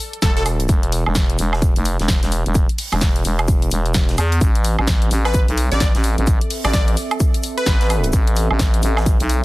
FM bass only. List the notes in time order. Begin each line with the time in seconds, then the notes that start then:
0.23 E1
0.69 E1
1.06 E1
1.39 E1
1.76 F1
1.99 E1
2.23 E1
2.46 E1
2.92 E1
3.25 E1
3.71 E1
4.18 E2
4.41 A1
4.79 A1
5.11 A1
5.48 B1
5.72 A1
5.95 A1
6.18 A1
6.64 A1
7.67 A1
8.13 A1
8.51 A1
8.83 A1
9.20 B1